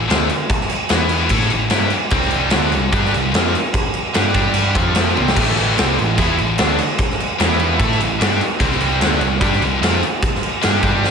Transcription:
0.08 picked electric bass D2, distorted electric guitar D3 A3 D4, snare, crash
0.30 crash
0.49 kick, crash
0.61 snare
0.70 crash
0.89 picked electric bass E2, distorted electric guitar E3 B3 E4, snare, crash
1.09 crash
1.29 picked electric bass A2, distorted electric guitar A3 E4 A4, kick, crash
1.41 snare
1.50 picked electric bass A1, distorted electric guitar A2 E3, crash
1.70 picked electric bass G2, distorted electric guitar G3 D4 G4, snare, crash
1.90 muted distorted electric guitar stroke, muted picked electric bass stroke, crash
2.10 picked electric bass C2, distorted electric guitar C3 G3 C4, kick, crash
2.22 snare
2.31 crash
2.50 distorted electric guitar D3 A3 D4, snare, crash
2.54 picked electric bass D2
2.72 picked electric bass C2, distorted electric guitar C3 G3, crash
2.92 picked electric bass G2, distorted electric guitar G3 D4 G4, kick, crash
3.05 snare
3.14 picked electric bass C2, distorted electric guitar C3 G3, crash
3.34 picked electric bass F2, distorted electric guitar F3 C4 F4, snare, crash
3.55 crash
3.74 kick, crash
3.94 crash
4.14 picked electric bass G2, distorted electric guitar G3 D4 G4, snare, crash
4.34 picked electric bass G2, distorted electric guitar G3 D4 G4, kick, crash
4.54 crash
4.75 picked electric bass F2, distorted electric guitar F3 C4 F4, kick, crash
4.95 snare, crash
5.15 picked electric bass C2, distorted electric guitar C3 G3 C4, high tom
5.28 snare
5.35 picked electric bass A1, distorted electric guitar A2 E3 A3, kick, crash
5.48 snare
5.57 crash
5.75 distorted electric guitar C3 G3 C4, snare, crash
5.80 picked electric bass C2, distorted electric guitar C4
5.98 picked electric bass A1, distorted electric guitar A2 E3, crash
6.17 picked electric bass E2, distorted electric guitar E3 B3 E4, kick, crash
6.38 picked electric bass A1, distorted electric guitar A2 E3, crash
6.58 picked electric bass D2, distorted electric guitar D3 A3 D4, snare, crash
6.79 crash
6.98 kick, crash
7.11 snare
7.20 crash
7.39 picked electric bass E2, distorted electric guitar E3 B3 E4, snare, crash
7.60 crash
7.79 picked electric bass A2, distorted electric guitar A3 E4 A4, kick, crash
7.91 snare
8.00 picked electric bass A1, distorted electric guitar A2 E3, crash
8.20 picked electric bass G2, distorted electric guitar G3 D4 G4, snare, crash
8.40 muted distorted electric guitar stroke, muted overdriven electric guitar stroke, muted picked electric bass stroke, crash
8.60 picked electric bass C2, distorted electric guitar C3 G3 C4, kick, crash
8.72 snare
8.81 crash
9.00 picked electric bass D2, distorted electric guitar D3 A3 D4, snare, crash
9.21 picked electric bass C2, distorted electric guitar C3 G3, crash
9.41 picked electric bass G2, distorted electric guitar G3 D4 G4, kick, crash
9.52 snare
9.61 picked electric bass C2, distorted electric guitar C3 G3, crash
9.82 picked electric bass F2, distorted electric guitar F3 C4 F4, snare, crash
10.03 crash
10.23 kick, crash
10.35 snare
10.43 crash
10.62 picked electric bass G2, distorted electric guitar G3 D4 G4, snare, crash
10.81 picked electric bass G2, distorted electric guitar G3 D4 G4, kick, crash
11.04 snare

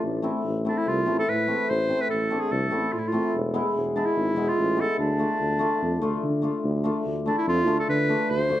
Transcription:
0.03 tuba A1
0.22 hammered dulcimer A3 C4 E4
0.45 tuba A1
0.65 hammered dulcimer A3 C4 E4, clarinet D4
0.78 clarinet E4
0.86 tuba C2, clarinet F4
1.06 tuba A1, hammered dulcimer A3 C4 E4
1.19 clarinet A4
1.29 tuba A2, clarinet B4
1.47 hammered dulcimer A3 C4 E4
1.70 tuba A1, clarinet C5
1.89 hammered dulcimer A3 C4 E4
2.01 clarinet B4
2.10 tuba A1, clarinet A4
2.30 hammered dulcimer A3 C4 D4
2.40 clarinet G#4
2.51 tuba C2, clarinet A4
2.71 tuba A1, hammered dulcimer A3 C4 E4
2.93 tuba A2, clarinet F4
2.99 clarinet E4
3.08 clarinet F4
3.12 hammered dulcimer A3 C4 E4
3.35 tuba E1
3.54 hammered dulcimer G#3 B3 E4
3.75 tuba E1
3.96 hammered dulcimer G#3 B3 E4, clarinet D4
4.06 clarinet E4
4.16 tuba G#1
4.36 tuba E1, hammered dulcimer G#3 B3 E4
4.48 clarinet F4
4.58 tuba A1
4.77 hammered dulcimer G#3 B3 E4, clarinet A4
4.99 tuba D2, clarinet D4
5.19 hammered dulcimer A3 D4 F4
5.40 tuba D2
5.59 hammered dulcimer A3 D4 F4
5.82 tuba F2
6.02 tuba D2, hammered dulcimer A3 D4 F4
6.24 tuba D3
6.42 hammered dulcimer A3 D4 F4
6.64 tuba D2
6.84 hammered dulcimer A3 D4 F4
7.06 tuba D2
7.26 hammered dulcimer A3 D4 E4, clarinet D4
7.38 clarinet E4
7.48 tuba F2, clarinet F4
7.67 tuba D2, hammered dulcimer A3 D4 F4
7.80 clarinet A4
7.89 tuba D3, clarinet B4
8.09 hammered dulcimer A3 D4 F4
8.30 tuba D2, clarinet C5
8.49 hammered dulcimer A3 D4 F4

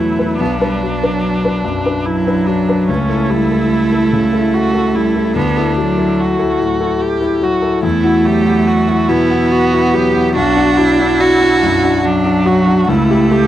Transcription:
Already playing: grand piano B2 F#3 E4 B4, cello A3, viola E4
0.19 grand piano E4 B4
0.39 grand piano B1, cello B3, viola D4
0.61 cello G3, grand piano D4 B4
0.81 cello F#3, grand piano F#3
1.03 grand piano D4 B4
1.45 grand piano D4 B4
1.65 grand piano F#2
1.86 grand piano D4 B4
2.05 cello F#3, viola E4
2.27 grand piano D4 B4
2.47 grand piano F#3, viola D4
2.69 grand piano D4 B4
2.88 grand piano C#2, cello A3, viola C#4
3.09 grand piano E4 A4
3.29 grand piano G3, viola E4
3.51 grand piano E4 A4
3.92 grand piano E4 A4
4.12 grand piano C#3
4.32 grand piano E4 A4
4.54 viola F#4
4.74 grand piano E4 A4
4.95 grand piano G3, viola E4
5.16 grand piano E4 A4
5.35 grand piano D2, cello B3, viola D4
5.57 grand piano E4 A4
5.77 grand piano F#3, cello F#3
5.98 grand piano E4 A4
6.20 viola F#4
6.38 grand piano E4 A4
6.59 grand piano A2
6.80 grand piano E4 A4
7.01 viola G4
7.21 grand piano E4 A4
7.41 grand piano F#3, viola F#4
7.62 grand piano E4 A4
7.83 grand piano E2, cello A3, viola E4
8.04 grand piano E4 F#4
8.25 grand piano F#3, viola G4
8.45 grand piano E4 F#4
8.67 viola F#4
8.87 grand piano E4 F#4
9.09 grand piano B2, cello B3, viola E4
9.30 grand piano E4 F#4
9.52 viola F#4
9.73 grand piano E4 F#4
9.94 grand piano F#3, viola G4
10.15 grand piano E4 F#4
10.35 grand piano B1, cello D4, viola F#4
10.56 grand piano D4 F#4
10.77 grand piano F#3, viola E4
10.99 grand piano D4 F#4
11.20 cello F#4
11.42 grand piano D4 F#4
11.63 grand piano F#2
11.84 grand piano D4 F#4
12.04 cello F#3, viola D4
12.25 grand piano D4 F#4
12.45 grand piano F#3, viola F#4
12.67 grand piano D4 F#4
12.87 grand piano C#2, cello A3, viola E4
13.09 grand piano E4 G4
13.31 grand piano A3, viola G4

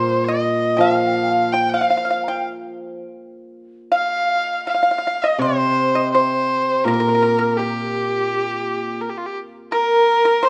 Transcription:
Already playing: hammered dulcimer A#2, pipa C5, erhu C5, xiao C5
0.24 erhu D#5
0.28 pipa D#5, xiao D#5
0.77 hammered dulcimer F3, erhu F5, pipa F5 G5
0.85 xiao F5
0.92 xiao G5
0.99 xiao F5
1.07 xiao G5
1.15 xiao F5
1.23 xiao G5
1.30 xiao F5
1.52 erhu G5, pipa G5, xiao G5
1.70 erhu F5
1.74 xiao F5, pipa F5
1.81 pipa F5
1.90 pipa F5
1.97 pipa F5
2.05 pipa F5
2.10 pipa F5
2.24 xiao A#5
2.28 pipa G5, xiao G5
3.92 pipa F5, erhu F5, xiao F5
4.37 pipa D#5
4.67 pipa F5, xiao F5, erhu F5
4.74 pipa F5
4.83 pipa F5
4.91 pipa F5
4.98 pipa F5
5.07 pipa F5
5.22 erhu D#5, pipa D#5
5.39 hammered dulcimer C3, erhu C5, xiao C5, pipa C5
5.95 pipa D#5
6.13 erhu C5, xiao C5, pipa C5
6.68 xiao C5
6.84 hammered dulcimer A#2, erhu A#4, xiao A#4, pipa A#4
6.94 pipa A#4
7.00 pipa A#4
7.09 pipa A#4
7.15 pipa A#4
7.23 pipa A#4
7.39 pipa A#4
7.57 erhu G4, xiao G4, pipa G4
9.01 erhu A#4
9.10 erhu G4
9.17 erhu F4
9.26 erhu G4
9.72 erhu A#4, pipa A#4, xiao A#4
10.25 pipa A#4
10.43 pipa C5, xiao C5, erhu C5

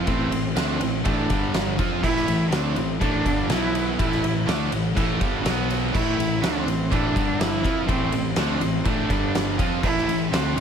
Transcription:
0.05 picked electric bass A1, distorted electric guitar A2 E3 A3, cello C4, kick, ride
0.31 picked electric bass A1, distorted electric guitar A2 E3, ride
0.56 picked electric bass D2, distorted electric guitar D3 A3 D4, cello C4, snare, ride
0.80 picked electric bass A1, distorted electric guitar A2 E3, ride
1.05 picked electric bass A1, distorted electric guitar A2 E3 A3, cello D4, kick, ride
1.30 picked electric bass G1, distorted electric guitar G2 D3 G3, kick, ride
1.54 snare, ride
1.77 picked electric bass F2, distorted electric guitar F3 C4 F4, kick, ride
2.01 picked electric bass A1, distorted electric guitar A2 E3 A3, cello E4, kick, crash
2.16 snare
2.27 picked electric bass A1, distorted electric guitar A2 E3, ride
2.50 picked electric bass D2, distorted electric guitar D3 A3 D4, cello C4, snare, ride
2.76 picked electric bass A1, distorted electric guitar A2 E3, ride
2.99 picked electric bass A1, distorted electric guitar A2 E3 A3, cello D4, kick, ride
3.25 picked electric bass G1, distorted electric guitar G2 D3 G3, kick, ride
3.49 picked electric bass B1, distorted electric guitar B2 F#3 B3, cello E4, snare, ride
3.75 ride
3.98 picked electric bass A1, distorted electric guitar A2 E3 A3, cello E4, kick, ride
4.12 snare
4.23 picked electric bass A1, distorted electric guitar A2 E3, ride
4.47 picked electric bass D2, distorted electric guitar D3 A3 D4, snare, ride
4.71 picked electric bass A1, distorted electric guitar A2 E3, ride
4.95 picked electric bass A1, distorted electric guitar A2 E3 A3, kick, ride
5.20 picked electric bass G1, distorted electric guitar G2 D3 G3, kick, ride
5.44 picked electric bass B1, distorted electric guitar B2 F#3 B3, snare, ride
5.70 ride
5.93 picked electric bass A1, distorted electric guitar A2 E3 A3, cello E4, kick, crash
6.18 picked electric bass A1, distorted electric guitar A2 E3, ride
6.42 picked electric bass D2, distorted electric guitar D3 A3 D4, cello C4, snare, ride
6.66 picked electric bass A1, distorted electric guitar A2 E3, ride
6.90 picked electric bass A1, distorted electric guitar A2 E3 A3, cello D4, kick, ride
7.14 picked electric bass G1, distorted electric guitar G2 D3 G3, kick, ride
7.40 cello E4, snare, ride
7.62 picked electric bass F2, distorted electric guitar F3 C4 F4, kick, ride
7.86 picked electric bass A1, distorted electric guitar A2 E3 A3, cello C4, kick, ride
8.12 picked electric bass A1, distorted electric guitar A2 E3, ride
8.36 picked electric bass D2, distorted electric guitar D3 A3 D4, cello C4, snare, ride
8.59 picked electric bass A1, distorted electric guitar A2 E3, ride
8.85 picked electric bass A1, distorted electric guitar A2 E3 A3, cello D4, kick, ride
9.09 picked electric bass G1, distorted electric guitar G2 D3 G3, kick, ride
9.35 snare, ride
9.58 picked electric bass F2, distorted electric guitar F3 C4 F4, kick, ride
9.83 picked electric bass A1, distorted electric guitar A2 E3 A3, cello E4, kick, crash
9.97 snare
10.07 picked electric bass A1, distorted electric guitar A2 E3, ride
10.31 picked electric bass D2, distorted electric guitar D3 A3 D4, cello C4, snare, ride
10.55 picked electric bass A1, distorted electric guitar A2 E3

